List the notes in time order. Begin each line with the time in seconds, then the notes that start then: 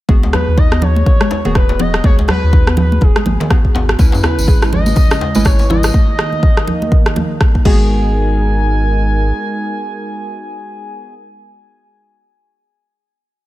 0.09 G#1 G#3 B3 F#4 G#4, kick, djembe tone, high conga
0.23 C#2 G#3, djembe slap
0.33 F#3 B4, cross-stick, djembe tone, djembe bass
0.48 D#2
0.57 D#4 D#5, kick, djembe tone
0.72 B3, cross-stick
0.82 C#5, djembe tone, low conga
0.96 high conga
1.06 kick, djembe tone, low conga
1.21 G#3, cross-stick
1.31 djembe slap, djembe tone
1.45 D#1 D#3 B3 F#4 G#4, high conga
1.55 B4, kick, cross-stick, djembe tone
1.69 djembe slap, high conga
1.79 B3 D#5, djembe tone, low conga
1.94 cross-stick
2.04 G#1 G#3 B3 F#4 G#4 C#5, kick, djembe tone, high conga
2.19 C#2 G#3, djembe slap
2.28 F#3 B4, cross-stick, djembe tone, djembe bass
2.43 D#2
2.53 D#4, kick, djembe tone
2.67 B3, cross-stick
2.77 B4, djembe tone, low conga
2.92 high conga
3.01 D#1 G#4, kick, djembe tone
3.16 G#3, cross-stick
3.26 G#1, djembe tone, high conga, low conga
3.40 D#3, djembe slap
3.50 B3 F#4 G#4, kick, cross-stick, djembe tone
3.65 kick
3.75 G#1 B3, djembe slap, djembe tone
3.89 cross-stick
3.99 C#2 C#3 G#3 C#4 E4 B4 D#5, kick, tambourine, high conga, djembe tone
4.12 F#2 C#4, tambourine, djembe slap
4.23 B3 B4, cross-stick, djembe tone, djembe bass
4.38 G#1, tambourine
4.47 G#4, kick, tambourine, djembe tone
4.62 E4, cross-stick, tambourine
4.72 D#5, djembe tone, low conga
4.86 tambourine, high conga
4.96 kick, tambourine, djembe tone, low conga
5.11 C#4, cross-stick, tambourine
5.21 djembe slap, djembe tone
5.35 G#1 G#3 C#4 E4 B4, tambourine, high conga
5.45 C#5, kick, cross-stick, tambourine, djembe tone
5.59 tambourine, djembe slap, high conga
5.70 E4 D#5, djembe tone, low conga
5.83 cross-stick, tambourine
5.94 D#3 A#3, kick, high conga
6.19 cross-stick
6.33 high conga
6.43 kick
6.57 cross-stick
6.67 low conga
6.82 high conga
6.92 kick
7.06 cross-stick
7.16 high conga, low conga
7.41 kick, cross-stick
7.55 kick
7.65 G#1 G#3 B3 D#4 F#4 G#4 A#4 G#5, kick, crash, high conga